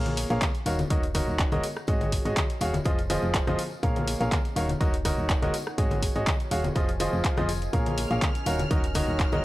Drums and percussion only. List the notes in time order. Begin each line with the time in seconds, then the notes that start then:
0.06 closed hi-hat, tambourine, high conga
0.17 open hi-hat, tambourine
0.30 closed hi-hat, tambourine
0.41 kick, clap, closed hi-hat, tambourine, high conga
0.55 closed hi-hat, tambourine
0.66 open hi-hat, tambourine
0.79 closed hi-hat, tambourine, high conga
0.90 kick, closed hi-hat, tambourine
1.03 closed hi-hat, tambourine
1.14 kick, cross-stick, open hi-hat, tambourine, high conga
1.28 tambourine
1.39 kick, clap, closed hi-hat, tambourine
1.52 closed hi-hat, tambourine, high conga
1.63 open hi-hat, tambourine
1.76 cross-stick, tambourine
1.87 kick, closed hi-hat, tambourine
2.01 closed hi-hat, tambourine, high conga
2.12 kick, open hi-hat, tambourine
2.25 closed hi-hat, tambourine
2.36 kick, clap, closed hi-hat, tambourine, high conga
2.50 closed hi-hat, tambourine
2.61 open hi-hat, tambourine
2.74 closed hi-hat, tambourine, high conga
2.84 kick, closed hi-hat, tambourine
2.99 closed hi-hat, tambourine
3.10 open hi-hat, tambourine, high conga
3.22 tambourine
3.34 kick, clap, closed hi-hat, tambourine
3.47 cross-stick, closed hi-hat, tambourine, high conga
3.59 open hi-hat, tambourine
3.71 tambourine
3.83 kick, closed hi-hat, tambourine
3.96 closed hi-hat, tambourine, high conga
4.08 open hi-hat, tambourine
4.20 closed hi-hat, tambourine
4.32 kick, clap, closed hi-hat, tambourine, high conga
4.45 closed hi-hat, tambourine
4.56 open hi-hat, tambourine
4.69 closed hi-hat, tambourine, high conga
4.80 kick, closed hi-hat, tambourine
4.94 closed hi-hat, tambourine
5.05 kick, cross-stick, open hi-hat, tambourine, high conga
5.18 tambourine
5.29 kick, clap, closed hi-hat, tambourine
5.42 closed hi-hat, tambourine, high conga
5.54 open hi-hat, tambourine
5.67 cross-stick, tambourine
5.78 kick, closed hi-hat, tambourine
5.91 closed hi-hat, tambourine, high conga
6.03 kick, open hi-hat, tambourine
6.15 closed hi-hat, tambourine
6.27 kick, clap, closed hi-hat, tambourine, high conga
6.40 closed hi-hat, tambourine
6.51 open hi-hat, tambourine
6.64 closed hi-hat, tambourine, high conga
6.75 kick, closed hi-hat, tambourine
6.88 closed hi-hat, tambourine
7.00 open hi-hat, tambourine, high conga
7.13 tambourine
7.24 kick, clap, closed hi-hat, tambourine
7.37 cross-stick, closed hi-hat, tambourine, high conga
7.49 open hi-hat, tambourine
7.62 closed hi-hat, tambourine
7.73 kick, closed hi-hat, tambourine
7.86 closed hi-hat, tambourine, high conga
7.97 open hi-hat, tambourine
8.10 closed hi-hat, tambourine
8.22 kick, clap, closed hi-hat, tambourine, high conga
8.35 closed hi-hat, tambourine
8.46 open hi-hat, tambourine
8.59 closed hi-hat, tambourine, high conga
8.71 kick, closed hi-hat, tambourine
8.84 closed hi-hat, tambourine
8.95 kick, cross-stick, open hi-hat, tambourine, high conga
9.09 tambourine
9.19 kick, clap, closed hi-hat, tambourine
9.32 closed hi-hat, tambourine, high conga